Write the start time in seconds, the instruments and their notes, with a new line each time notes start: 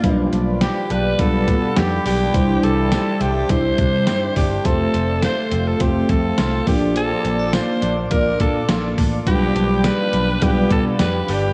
Already playing: clean electric guitar D4 F4, alto saxophone F4, ambient pad D5 F5
0.03 fingered electric bass B1, clean electric guitar F3, fm electric piano G3 D4 F4 B4, ambient pad G4 B5, kick, closed hi-hat
0.32 fingered electric bass B1, clean electric guitar D4, closed hi-hat
0.61 clean electric guitar G4, alto saxophone G4, snare, closed hi-hat
0.90 fingered electric bass B1, clean electric guitar D4, alto saxophone B4, closed hi-hat
1.18 fingered electric bass B1, fm electric piano G3 D4 F4 B4, clean electric guitar B3, alto saxophone A4, kick, closed hi-hat
1.48 fingered electric bass B2, clean electric guitar D4, kick, closed hi-hat
1.76 fingered electric bass F2, clean electric guitar G4, alto saxophone G4, snare, closed hi-hat
2.05 fingered electric bass B1, clean electric guitar D4, alto saxophone G4, open hi-hat
2.34 fingered electric bass C2, clean electric guitar E3, fm electric piano G3 D4 E4 C5, ambient pad E5 C6, kick, closed hi-hat
2.63 fingered electric bass C2, clean electric guitar D4, alto saxophone A4, closed hi-hat
2.92 clean electric guitar G4, snare, closed hi-hat, tambourine
3.20 fingered electric bass C2, clean electric guitar D4, alto saxophone G4, closed hi-hat
3.49 fingered electric bass C2, fm electric piano G3 D4 E4 C5, clean electric guitar C4, alto saxophone C5, kick, closed hi-hat
3.78 fingered electric bass C3, clean electric guitar D4, kick, closed hi-hat
4.07 fingered electric bass G2, clean electric guitar G4, snare, closed hi-hat, tambourine
4.36 fingered electric bass G1, clean electric guitar D4, alto saxophone G4, kick, open hi-hat
4.64 fingered electric bass F1, fm electric piano A3 C4 F4 C5, clean electric guitar A3, ambient pad A4 C5 F5, alto saxophone A4, kick, closed hi-hat
4.94 fingered electric bass F1, clean electric guitar C4, closed hi-hat
5.22 clean electric guitar F4, alto saxophone C5, snare, closed hi-hat, tambourine
5.51 fingered electric bass F1, clean electric guitar C4, closed hi-hat
5.67 alto saxophone A4
5.80 fingered electric bass F1, fm electric piano A3 C4 F4 C5, clean electric guitar A3, alto saxophone G4, kick, closed hi-hat
6.09 fingered electric bass F2, clean electric guitar C4, alto saxophone A4, kick, closed hi-hat
6.38 fingered electric bass C2, clean electric guitar F4, snare, closed hi-hat, tambourine
6.66 fingered electric bass A#1, clean electric guitar F3, fm electric piano A#3 D4 F4 D5, ambient pad A#3 D5 F5 D6, alto saxophone G4, kick, open hi-hat
6.96 clean electric guitar F3, alto saxophone A4, closed hi-hat
7.24 fingered electric bass A#1, clean electric guitar C4, closed hi-hat
7.39 clean electric guitar D4
7.53 clean electric guitar F4, alto saxophone C5, snare, closed hi-hat, tambourine
7.82 fingered electric bass A#1, clean electric guitar D4, closed hi-hat
8.11 fingered electric bass A#1, fm electric piano A#3 D4 F4 D5, clean electric guitar A#3, alto saxophone A#4, kick, closed hi-hat
8.40 fingered electric bass A#2, clean electric guitar D4, alto saxophone A4, kick, closed hi-hat
8.69 fingered electric bass A#1, clean electric guitar F4, snare, closed hi-hat, tambourine
8.98 fingered electric bass A1, clean electric guitar D4, kick, open hi-hat
9.26 fingered electric bass B1, clean electric guitar F3, fm electric piano G3 D4 F4 B4, ambient pad G4 D5 B5, alto saxophone G4, kick, closed hi-hat
9.55 fingered electric bass B1, clean electric guitar D4, closed hi-hat
9.84 clean electric guitar G4, alto saxophone B4, snare, closed hi-hat, tambourine
10.13 fingered electric bass B1, clean electric guitar D4, closed hi-hat
10.41 fingered electric bass B1, fm electric piano G3 D4 F4 B4, clean electric guitar B3, alto saxophone G4, kick, closed hi-hat
10.70 fingered electric bass B2, clean electric guitar D4, alto saxophone A4, kick, closed hi-hat
10.99 fingered electric bass F2, clean electric guitar G4, alto saxophone B4, snare, closed hi-hat, tambourine
11.28 fingered electric bass G1, clean electric guitar D4, alto saxophone G4, open hi-hat